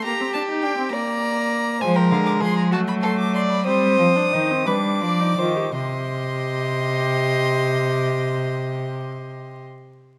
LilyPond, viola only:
\new Staff \with { instrumentName = "Viola" } { \time 6/8 \key c \minor \tempo 4. = 58 bes16 c'16 d'16 ees'16 d'16 c'16 bes4. | aes4. a4. | c'8. d'16 ees'16 c'16 d'8. ees'16 f'16 g'16 | g'2.~ |
g'2. | }